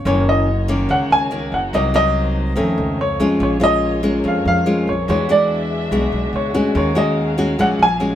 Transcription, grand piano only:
0.07 C#5
0.29 D#5
0.91 F#5
1.12 G#5
1.54 F#5
1.75 D#5
1.96 D#5
3.01 C#5
3.43 C#5
3.64 D#5
4.28 F5
4.48 F5
4.89 C#5
5.10 C#5
5.31 D5
6.36 C#5
6.77 C#5
6.98 D#5
7.61 F#5
7.83 G#5

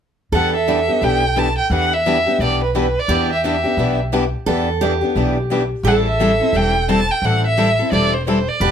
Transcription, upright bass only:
0.32 E2
1.02 B1
1.70 E2
2.39 B1
3.08 E2
3.77 B1
4.46 E2
5.15 B1
5.83 A1
6.53 E1
7.22 A1
7.92 E1
8.60 E1

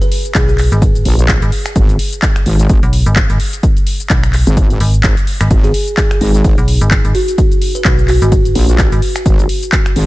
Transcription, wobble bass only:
1.05 A#1
1.76 G#1
2.46 G#1
2.69 G#1
4.47 G#1
5.04 G#1
5.51 G#1
6.21 G#1
6.44 G#1
8.55 A#1
9.26 G#1
9.96 G#1

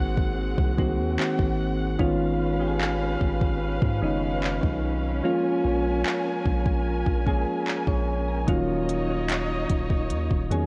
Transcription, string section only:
Already playing: C4 G#4 F#5
1.18 F#5
2.00 C#4 B4 F5
5.24 A#4 G#5
8.48 D#4 C#5 D#5

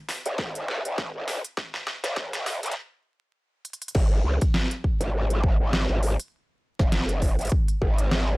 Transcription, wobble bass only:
0.26 G#1
0.85 G#1
1.15 G#1
2.04 F#1
2.63 G#1
3.95 G#1
4.24 C#2
5.00 G#1
5.60 G#1
5.89 G#1
6.79 F#1
7.39 G#1
7.81 G#1

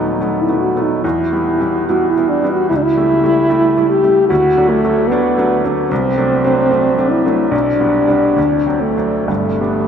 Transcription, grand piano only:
Already playing: D#1 D#2 F#3 A3 B3
0.20 F#3 A3 B3
0.48 F#3 A3 B3
0.76 F#3 A3 B3
1.04 E2
1.32 G3 B3 E4
1.60 G3 B3 E4
1.89 G3 B3 E4
2.17 G3 B3 E4
2.43 G3 B3 E4
2.71 C#2
2.97 G3 A3 E4
3.23 G3 A3 E4
3.50 G3 A3 E4
3.77 G3 A3 E4
4.03 G3 A3 E4
4.30 D2
4.57 F#3 A3 D4
4.84 F#3 A3 D4
5.11 F#3 A3 D4
5.37 F#3 A3 D4
5.64 F#3 A3 D4
5.91 C2
6.17 F#3 A3 D4
6.44 F#3 A3 D4
6.71 F#3 A3 D4
6.98 F#3 A3 D4
7.26 F#3 A3 D4
7.51 B1
7.80 G3 B3 D4
8.07 G3 B3 D4
8.36 D2
8.66 F#3 C4 D4
8.97 F#3 C4 D4
9.28 G1 G2
9.60 G3 B3 D4

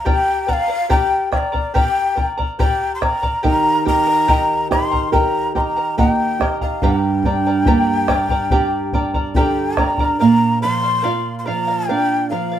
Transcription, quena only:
0.07 G5
0.49 F5 F#5
0.91 G5
1.34 F5
1.38 D5
1.75 G5
2.60 G5
2.95 C6
3.03 A#5
3.46 A#5
3.88 A#5
4.72 C6
5.13 A#5
5.57 A#5 C6
5.98 F#5
6.09 G5
6.62 F5
6.82 G5
9.35 G5
9.78 A#5
10.20 A#5
10.62 C6
11.39 C6
11.46 A#5
11.88 G5
12.30 F5

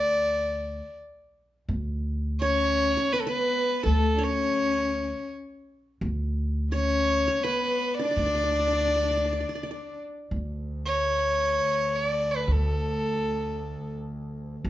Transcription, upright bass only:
Already playing: D2
1.69 D2
3.86 D2
6.01 D2
8.17 D2
10.31 D2
12.48 D2
14.65 D2

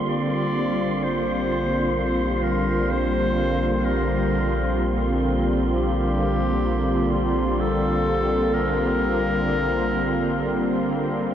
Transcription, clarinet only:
0.08 D5
1.04 C5
1.97 C5
2.43 A#4
2.90 C5
3.85 A#4
5.73 G4
7.12 F4
7.60 A4
8.54 A#4

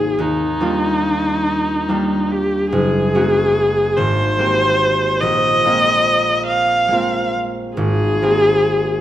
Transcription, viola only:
Already playing: G#4
0.20 D#4
2.32 G4
2.70 G#4
3.97 C5
5.20 D#5
6.47 F5
7.76 G#4

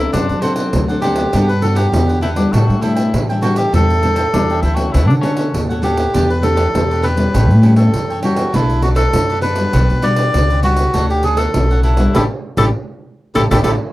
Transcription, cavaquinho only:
Already playing: A#4 C#5 E5
0.12 D4 C5 D5 F#5
0.42 D4 C5 D5 F#5
0.55 C5 D5 F#5
0.88 C5 D5 F#5
1.02 D4 C5 D5 F#5
1.16 C5 D5 F#5
1.32 D4 G4 B4 F#5
1.62 D4 G4 B4 F#5
1.75 D4 G4 B4 F#5
2.07 G4 B4 F#5
2.21 D4 G4 B4 F#5
2.36 G4 B4 F#5
2.53 D4 A4 E5 G5
2.81 D4 A4 E5 G5
2.95 A4 E5 G5
3.29 A4 E5 G5
3.42 D4 A4 E5 G5
3.55 A4 E5 G5
3.73 D4 A4 E5 G5
4.01 D4 A4 E5 G5
4.16 D4 A4 E5 G5
4.51 A4 E5 G5
4.63 D4 A4 E5 G5
4.76 A4 E5 G5
4.94 D4 A4 C#5 F#5
5.22 D4 A4 C#5 F#5
5.36 A4 C#5 F#5
5.69 A4 C#5 F#5
5.82 D4 A4 C#5 F#5
5.97 A4 C#5 F#5
6.13 E4 G4 B4 D5
6.42 E4 G4 B4 D5
6.56 E4 G4 B4 D5
6.90 G4 B4 D5
7.02 E4 G4 B4 D5
7.17 G4 B4 D5
7.34 G4 A4 C#5 G5
7.62 G4 A4 C#5 G5
7.76 A4 C#5 G5
8.10 A4 C#5 G5
8.23 G4 A4 C#5 G5
8.37 A4 C#5 G5
8.53 D4 A4 B4 D5
8.82 D4 A4 B4 D5
8.95 D4 A4 B4 D5
9.30 A4 B4 D5
9.41 D4 A4 B4 D5
9.55 A4 B4 D5
9.73 F#4 G4 B4 D5
10.03 F#4 G4 B4 D5
10.16 G4 B4 D5
10.50 G4 B4 D5
10.62 F#4 G4 B4 D5
10.76 G4 B4 D5
10.93 D4 A4 C#5 F#5
11.24 D4 A4 C#5 F#5
11.37 D4 A4 C#5 F#5
11.71 A4 C#5 F#5
11.84 D4 A4 C#5 F#5
11.98 A4 C#5 F#5
12.16 G4 A4 D5
12.58 G4 A4 D5
13.36 G4 A4 D5
13.52 G4 A4 D5
13.64 G4 A4 D5

